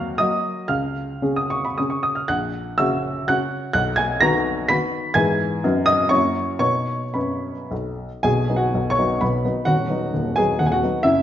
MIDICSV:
0, 0, Header, 1, 2, 480
1, 0, Start_track
1, 0, Key_signature, 5, "major"
1, 0, Tempo, 500835
1, 659, Time_signature, 3, 2, 24, 8
1, 660, Tempo, 544465
1, 1620, Tempo, 502934
1, 3060, Tempo, 466926
1, 4980, Tempo, 484262
1, 6420, Tempo, 552995
1, 7380, Tempo, 510204
1, 8340, Tempo, 466926
1, 10260, Tempo, 441176
1, 10938, End_track
2, 0, Start_track
2, 0, Title_t, "Grand piano"
2, 0, Program_c, 0, 0
2, 0, Control_c, 0, 64, 127
2, 0, Note_on_c, 0, 39, 77
2, 0, Note_on_c, 0, 54, 66
2, 0, Note_on_c, 0, 58, 65
2, 0, Note_on_c, 0, 66, 71
2, 0, Note_on_c, 0, 77, 77
2, 0, Note_on_c, 0, 78, 94
2, 0, Note_on_c, 0, 89, 96
2, 0, Note_on_c, 0, 90, 110
2, 138, Note_off_c, 0, 54, 0
2, 140, Note_off_c, 0, 58, 0
2, 143, Note_off_c, 0, 66, 0
2, 145, Note_off_c, 0, 77, 0
2, 172, Note_off_c, 0, 89, 0
2, 174, Note_on_c, 0, 87, 99
2, 186, Control_c, 0, 64, 0
2, 187, Note_on_c, 0, 58, 49
2, 189, Note_on_c, 0, 75, 77
2, 190, Note_off_c, 0, 39, 0
2, 190, Note_on_c, 0, 54, 53
2, 191, Note_off_c, 0, 78, 0
2, 194, Note_on_c, 0, 66, 54
2, 196, Note_off_c, 0, 90, 0
2, 626, Note_off_c, 0, 58, 0
2, 627, Note_off_c, 0, 54, 0
2, 630, Note_off_c, 0, 66, 0
2, 632, Note_off_c, 0, 75, 0
2, 652, Note_on_c, 0, 89, 87
2, 658, Note_off_c, 0, 87, 0
2, 658, Note_on_c, 0, 37, 63
2, 662, Note_on_c, 0, 77, 64
2, 873, Control_c, 0, 64, 127
2, 1120, Note_off_c, 0, 37, 0
2, 1128, Note_on_c, 0, 49, 52
2, 1130, Note_on_c, 0, 61, 49
2, 1135, Note_on_c, 0, 68, 52
2, 1228, Note_off_c, 0, 77, 0
2, 1256, Note_on_c, 0, 87, 75
2, 1259, Note_off_c, 0, 89, 0
2, 1377, Note_on_c, 0, 85, 83
2, 1382, Note_off_c, 0, 87, 0
2, 1500, Note_off_c, 0, 85, 0
2, 1505, Note_on_c, 0, 83, 73
2, 1581, Note_off_c, 0, 49, 0
2, 1582, Note_off_c, 0, 61, 0
2, 1584, Note_off_c, 0, 68, 0
2, 1619, Note_off_c, 0, 83, 0
2, 1619, Note_on_c, 0, 87, 71
2, 1626, Control_c, 0, 64, 0
2, 1629, Note_on_c, 0, 49, 40
2, 1634, Note_on_c, 0, 61, 41
2, 1639, Note_on_c, 0, 68, 46
2, 1736, Note_on_c, 0, 85, 65
2, 1741, Note_off_c, 0, 87, 0
2, 1861, Note_on_c, 0, 87, 80
2, 1862, Note_off_c, 0, 85, 0
2, 1978, Note_on_c, 0, 89, 67
2, 1985, Note_off_c, 0, 87, 0
2, 2072, Note_off_c, 0, 49, 0
2, 2075, Note_off_c, 0, 61, 0
2, 2077, Note_off_c, 0, 68, 0
2, 2101, Note_off_c, 0, 89, 0
2, 2101, Note_on_c, 0, 90, 102
2, 2110, Note_on_c, 0, 34, 66
2, 2112, Note_on_c, 0, 78, 74
2, 2284, Control_c, 0, 64, 127
2, 2557, Note_off_c, 0, 78, 0
2, 2574, Note_on_c, 0, 88, 98
2, 2575, Note_off_c, 0, 34, 0
2, 2582, Note_on_c, 0, 49, 63
2, 2584, Note_on_c, 0, 76, 69
2, 2585, Note_off_c, 0, 90, 0
2, 2585, Note_on_c, 0, 61, 60
2, 2590, Note_on_c, 0, 66, 72
2, 3019, Note_off_c, 0, 49, 0
2, 3021, Note_off_c, 0, 61, 0
2, 3023, Note_off_c, 0, 66, 0
2, 3025, Note_off_c, 0, 76, 0
2, 3053, Note_off_c, 0, 88, 0
2, 3054, Note_on_c, 0, 90, 98
2, 3059, Note_on_c, 0, 49, 51
2, 3064, Note_on_c, 0, 78, 81
2, 3068, Note_on_c, 0, 66, 55
2, 3069, Note_on_c, 0, 61, 56
2, 3073, Control_c, 0, 64, 0
2, 3489, Note_off_c, 0, 49, 0
2, 3494, Note_off_c, 0, 61, 0
2, 3494, Note_off_c, 0, 66, 0
2, 3499, Note_off_c, 0, 78, 0
2, 3505, Note_off_c, 0, 90, 0
2, 3521, Note_on_c, 0, 90, 110
2, 3530, Note_on_c, 0, 35, 80
2, 3530, Note_on_c, 0, 78, 83
2, 3702, Control_c, 0, 64, 127
2, 3748, Note_off_c, 0, 78, 0
2, 3752, Note_on_c, 0, 92, 109
2, 3759, Note_off_c, 0, 90, 0
2, 3769, Note_on_c, 0, 80, 89
2, 3997, Note_off_c, 0, 35, 0
2, 3998, Note_off_c, 0, 80, 0
2, 4005, Note_on_c, 0, 94, 113
2, 4006, Note_off_c, 0, 92, 0
2, 4016, Note_on_c, 0, 51, 75
2, 4019, Note_on_c, 0, 82, 86
2, 4021, Note_on_c, 0, 66, 80
2, 4024, Note_on_c, 0, 59, 69
2, 4467, Note_off_c, 0, 51, 0
2, 4470, Note_off_c, 0, 66, 0
2, 4471, Note_off_c, 0, 59, 0
2, 4475, Note_off_c, 0, 82, 0
2, 4498, Note_on_c, 0, 95, 113
2, 4503, Note_off_c, 0, 94, 0
2, 4505, Note_on_c, 0, 83, 93
2, 4509, Note_on_c, 0, 51, 58
2, 4515, Note_on_c, 0, 59, 58
2, 4516, Control_c, 0, 64, 0
2, 4519, Note_on_c, 0, 66, 66
2, 4939, Note_off_c, 0, 51, 0
2, 4942, Note_off_c, 0, 59, 0
2, 4944, Note_off_c, 0, 66, 0
2, 4945, Note_off_c, 0, 83, 0
2, 4967, Note_on_c, 0, 92, 114
2, 4975, Note_off_c, 0, 95, 0
2, 4975, Note_on_c, 0, 52, 61
2, 4978, Note_on_c, 0, 80, 93
2, 4980, Note_on_c, 0, 44, 82
2, 4985, Note_on_c, 0, 59, 62
2, 4989, Note_on_c, 0, 64, 61
2, 5184, Control_c, 0, 64, 127
2, 5415, Note_off_c, 0, 52, 0
2, 5419, Note_off_c, 0, 59, 0
2, 5421, Note_off_c, 0, 64, 0
2, 5442, Note_off_c, 0, 44, 0
2, 5462, Note_on_c, 0, 54, 61
2, 5463, Note_on_c, 0, 42, 84
2, 5466, Control_c, 0, 64, 0
2, 5469, Note_on_c, 0, 59, 62
2, 5472, Note_on_c, 0, 63, 58
2, 5657, Note_off_c, 0, 80, 0
2, 5671, Control_c, 0, 64, 127
2, 5677, Note_on_c, 0, 87, 117
2, 5691, Note_off_c, 0, 92, 0
2, 5692, Note_on_c, 0, 75, 84
2, 5897, Note_off_c, 0, 54, 0
2, 5900, Note_off_c, 0, 59, 0
2, 5901, Note_off_c, 0, 63, 0
2, 5908, Note_off_c, 0, 42, 0
2, 5909, Note_on_c, 0, 85, 92
2, 5914, Note_off_c, 0, 75, 0
2, 5920, Note_on_c, 0, 54, 54
2, 5923, Note_off_c, 0, 87, 0
2, 5923, Note_on_c, 0, 42, 77
2, 5925, Note_on_c, 0, 73, 74
2, 5929, Note_on_c, 0, 58, 50
2, 5932, Note_on_c, 0, 64, 51
2, 5948, Control_c, 0, 64, 0
2, 6135, Control_c, 0, 64, 127
2, 6373, Note_off_c, 0, 54, 0
2, 6377, Note_off_c, 0, 58, 0
2, 6379, Note_off_c, 0, 64, 0
2, 6381, Note_off_c, 0, 73, 0
2, 6391, Note_off_c, 0, 85, 0
2, 6399, Note_off_c, 0, 42, 0
2, 6406, Note_on_c, 0, 85, 102
2, 6408, Note_on_c, 0, 47, 62
2, 6410, Note_on_c, 0, 59, 50
2, 6414, Note_on_c, 0, 63, 53
2, 6414, Note_on_c, 0, 73, 75
2, 6431, Control_c, 0, 64, 0
2, 6615, Control_c, 0, 64, 127
2, 6749, Note_off_c, 0, 47, 0
2, 6798, Note_off_c, 0, 59, 0
2, 6800, Note_off_c, 0, 63, 0
2, 6863, Note_off_c, 0, 73, 0
2, 6880, Note_on_c, 0, 83, 68
2, 6890, Note_on_c, 0, 42, 63
2, 6893, Note_off_c, 0, 85, 0
2, 6894, Note_on_c, 0, 71, 56
2, 7229, Note_off_c, 0, 42, 0
2, 7343, Note_off_c, 0, 71, 0
2, 7370, Note_off_c, 0, 83, 0
2, 7376, Note_on_c, 0, 35, 57
2, 7391, Control_c, 0, 64, 0
2, 7721, Note_off_c, 0, 35, 0
2, 7867, Note_on_c, 0, 80, 107
2, 7876, Note_on_c, 0, 35, 63
2, 7878, Note_on_c, 0, 68, 78
2, 7880, Note_on_c, 0, 47, 70
2, 8045, Control_c, 0, 64, 127
2, 8098, Note_off_c, 0, 35, 0
2, 8100, Note_off_c, 0, 47, 0
2, 8108, Note_on_c, 0, 54, 55
2, 8117, Note_on_c, 0, 59, 51
2, 8118, Note_on_c, 0, 63, 55
2, 8163, Note_off_c, 0, 68, 0
2, 8179, Note_off_c, 0, 80, 0
2, 8181, Note_on_c, 0, 78, 75
2, 8194, Note_on_c, 0, 66, 61
2, 8318, Note_off_c, 0, 54, 0
2, 8324, Note_off_c, 0, 59, 0
2, 8324, Note_off_c, 0, 63, 0
2, 8351, Note_on_c, 0, 47, 60
2, 8353, Note_on_c, 0, 35, 61
2, 8494, Note_off_c, 0, 66, 0
2, 8510, Note_off_c, 0, 78, 0
2, 8513, Note_on_c, 0, 85, 99
2, 8525, Note_on_c, 0, 73, 79
2, 8592, Note_off_c, 0, 47, 0
2, 8593, Note_off_c, 0, 35, 0
2, 8597, Note_on_c, 0, 59, 56
2, 8601, Note_on_c, 0, 54, 53
2, 8604, Note_on_c, 0, 63, 61
2, 8812, Note_off_c, 0, 59, 0
2, 8814, Note_off_c, 0, 54, 0
2, 8816, Note_off_c, 0, 63, 0
2, 8819, Note_off_c, 0, 73, 0
2, 8829, Note_on_c, 0, 83, 82
2, 8833, Note_on_c, 0, 47, 59
2, 8835, Note_off_c, 0, 85, 0
2, 8835, Note_on_c, 0, 71, 63
2, 8839, Note_on_c, 0, 35, 56
2, 8845, Control_c, 0, 64, 0
2, 9058, Note_off_c, 0, 47, 0
2, 9061, Note_off_c, 0, 35, 0
2, 9072, Note_on_c, 0, 54, 50
2, 9079, Note_on_c, 0, 59, 53
2, 9082, Note_on_c, 0, 63, 54
2, 9264, Note_off_c, 0, 71, 0
2, 9276, Note_off_c, 0, 54, 0
2, 9280, Note_off_c, 0, 59, 0
2, 9281, Note_off_c, 0, 63, 0
2, 9285, Note_on_c, 0, 78, 92
2, 9293, Note_off_c, 0, 83, 0
2, 9296, Note_on_c, 0, 27, 61
2, 9296, Note_on_c, 0, 39, 64
2, 9296, Note_on_c, 0, 66, 72
2, 9464, Control_c, 0, 64, 127
2, 9525, Note_off_c, 0, 27, 0
2, 9525, Note_off_c, 0, 39, 0
2, 9540, Note_on_c, 0, 54, 53
2, 9540, Note_on_c, 0, 59, 52
2, 9547, Note_on_c, 0, 63, 55
2, 9756, Note_off_c, 0, 54, 0
2, 9756, Note_off_c, 0, 59, 0
2, 9761, Note_off_c, 0, 63, 0
2, 9780, Note_on_c, 0, 39, 56
2, 9782, Note_on_c, 0, 27, 60
2, 9980, Note_off_c, 0, 66, 0
2, 10009, Note_on_c, 0, 80, 99
2, 10015, Note_off_c, 0, 39, 0
2, 10015, Note_off_c, 0, 78, 0
2, 10016, Note_off_c, 0, 27, 0
2, 10025, Note_on_c, 0, 59, 56
2, 10026, Note_on_c, 0, 54, 58
2, 10027, Note_on_c, 0, 68, 77
2, 10036, Note_on_c, 0, 63, 56
2, 10238, Note_off_c, 0, 59, 0
2, 10239, Note_off_c, 0, 54, 0
2, 10244, Note_off_c, 0, 63, 0
2, 10246, Note_off_c, 0, 68, 0
2, 10250, Note_on_c, 0, 78, 87
2, 10254, Note_off_c, 0, 80, 0
2, 10260, Note_on_c, 0, 39, 61
2, 10261, Note_on_c, 0, 27, 59
2, 10274, Control_c, 0, 64, 0
2, 10327, Note_off_c, 0, 78, 0
2, 10328, Note_on_c, 0, 80, 80
2, 10387, Note_on_c, 0, 78, 85
2, 10398, Note_on_c, 0, 66, 75
2, 10402, Note_off_c, 0, 80, 0
2, 10499, Note_off_c, 0, 39, 0
2, 10500, Note_off_c, 0, 27, 0
2, 10510, Note_on_c, 0, 54, 46
2, 10512, Note_on_c, 0, 59, 53
2, 10522, Note_on_c, 0, 63, 56
2, 10716, Note_off_c, 0, 66, 0
2, 10721, Note_off_c, 0, 54, 0
2, 10722, Note_off_c, 0, 59, 0
2, 10727, Note_on_c, 0, 76, 103
2, 10728, Note_off_c, 0, 63, 0
2, 10734, Note_off_c, 0, 78, 0
2, 10737, Note_on_c, 0, 30, 61
2, 10739, Note_on_c, 0, 64, 75
2, 10740, Note_on_c, 0, 42, 73
2, 10919, Control_c, 0, 64, 127
2, 10938, Note_off_c, 0, 30, 0
2, 10938, Note_off_c, 0, 42, 0
2, 10938, Note_off_c, 0, 64, 0
2, 10938, Note_off_c, 0, 76, 0
2, 10938, End_track
0, 0, End_of_file